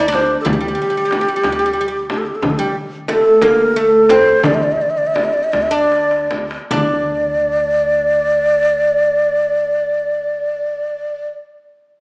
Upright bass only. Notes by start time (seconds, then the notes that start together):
Already playing: D2
0.46 D2
1.44 D2
2.42 D2
3.42 D2
4.45 D2
5.53 D2
6.71 D2